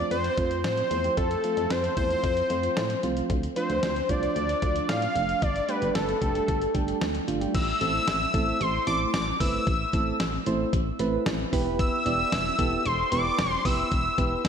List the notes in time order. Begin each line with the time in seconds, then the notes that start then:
0.00 F3 A3 C4 F4
0.11 F2 C5, closed hi-hat
0.24 closed hi-hat
0.37 F2 F3 A3 C4 F4, kick, closed hi-hat
0.51 closed hi-hat
0.64 A2 C5, snare, closed hi-hat
0.77 closed hi-hat
0.91 E2 F3 A3 C4 E4, closed hi-hat
1.04 F3 A3 C4 G4, closed hi-hat
1.17 F2 A4, kick, closed hi-hat
1.31 closed hi-hat
1.44 F3 A3 C4 F4, closed hi-hat
1.57 F2, closed hi-hat
1.70 F2 C5, snare, closed hi-hat
1.84 closed hi-hat
1.97 E2 F3 A3 C4 E4 C5, kick, closed hi-hat
2.10 F3 A3 C4 F4, closed hi-hat
2.24 F2, kick, closed hi-hat
2.37 closed hi-hat
2.50 F2 F3 A3 C4 F4, closed hi-hat
2.63 closed hi-hat
2.77 A2, snare, closed hi-hat
2.90 closed hi-hat
3.03 C2 F3 A3 C4 F4, closed hi-hat
3.17 F3 A3 C4 F4, closed hi-hat
3.30 D2, kick, closed hi-hat
3.43 closed hi-hat
3.56 F3 A3 D4 F4 C5, closed hi-hat
3.70 D2, closed hi-hat
3.83 D2, snare, closed hi-hat
3.96 closed hi-hat
4.09 C2 F3 A3 D4 F4 D5, kick, closed hi-hat
4.23 F3 A3 D4 F4, closed hi-hat
4.36 D2, closed hi-hat
4.49 closed hi-hat
4.62 D2 F3 A3 D4 F4, kick, closed hi-hat
4.76 closed hi-hat
4.89 A2 F5, snare, closed hi-hat
5.02 closed hi-hat
5.15 F1 F3 A3 D4 F4, closed hi-hat
5.29 F3 A3 D4 F4, closed hi-hat
5.42 G1 D5, kick, closed hi-hat
5.56 closed hi-hat
5.69 G3 A3 D4 G4 B4, closed hi-hat
5.82 G1, closed hi-hat
5.95 G1 A4, snare, closed hi-hat
6.09 closed hi-hat
6.22 F1 G3 A3 D4 G4, kick, closed hi-hat
6.35 G3 A3 D4 G4, closed hi-hat
6.48 G1, kick, closed hi-hat
6.62 closed hi-hat
6.75 G1 G3 A3 D4 G4, kick, closed hi-hat
6.88 closed hi-hat
7.01 D2, snare, closed hi-hat
7.15 closed hi-hat
7.28 G1 G3 A3 D4 F4, closed hi-hat
7.41 G3 A3 D4 G4, closed hi-hat
7.54 A1 E6, kick, closed hi-hat, crash
7.81 A1 A3 C4 E4 A4, closed hi-hat
8.08 A1, snare, closed hi-hat
8.34 A1 A3 C4 E4 A4, kick, closed hi-hat
8.61 A1 C6, closed hi-hat
8.87 A1 A3 C4 E4 A4 D6, closed hi-hat
9.14 A1 D6, snare, closed hi-hat
9.40 G1 A3 C4 E4 B4 E6, kick, open hi-hat
9.67 A1, kick, closed hi-hat
9.93 A1 A3 C4 E4 A4, kick, closed hi-hat
10.20 A1, snare, closed hi-hat
10.46 A1 A3 C4 E4 C5, closed hi-hat
10.73 A1, kick, closed hi-hat
10.99 A1 A3 C4 E4 B4, closed hi-hat
11.26 A1, snare, closed hi-hat
11.53 E1 B3 E4 G4 B4, kick, open hi-hat
11.79 E6, kick, closed hi-hat
12.06 E1 B3 E4 G4 D5, closed hi-hat
12.32 E1, snare, closed hi-hat
12.59 E1 B3 E4 G4 A4, kick, closed hi-hat
12.85 E1 C6, closed hi-hat
13.12 E1 B3 E4 G4 B4 D6, closed hi-hat
13.39 E1, snare, closed hi-hat
13.51 C6
13.65 F1 B3 E4 G4 B4 E6, kick, open hi-hat
13.92 E1, kick, closed hi-hat
14.18 E1 B3 E4 G4 B4, kick, closed hi-hat
14.45 E1, snare, closed hi-hat